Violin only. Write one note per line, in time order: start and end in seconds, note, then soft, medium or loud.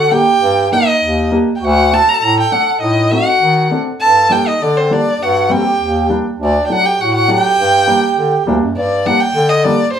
0.00 0.13 F#5 medium
0.12 0.72 G5 loud
0.73 1.29 D#5 loud
1.56 1.66 G5 medium
1.65 1.96 F#5 loud
1.94 2.10 A5 loud
2.09 2.16 A#5 loud
2.14 2.24 A5 medium
2.23 2.38 A#5 loud
2.40 2.54 G5 medium
2.52 2.81 F#5 medium
2.82 3.13 D#5 medium
3.12 3.71 F#5 loud
4.01 4.34 A5 loud
4.32 4.49 G5 loud
4.47 4.64 D#5 medium
4.62 4.78 D5 loud
4.77 4.95 C5 medium
4.93 5.24 D5 loud
5.22 5.53 F#5 medium
5.52 6.10 G5 loud
6.44 6.66 D5 loud
6.66 6.73 G5 medium
6.72 6.87 F#5 loud
6.86 7.03 G5 loud
7.01 7.14 F#5 medium
7.15 7.32 F#5 loud
7.30 8.47 G5 loud
8.77 9.08 D5 medium
9.06 9.22 F#5 loud
9.21 9.51 G5 loud
9.49 9.66 D#5 loud
9.64 9.93 D5 loud
9.93 9.99 C5 medium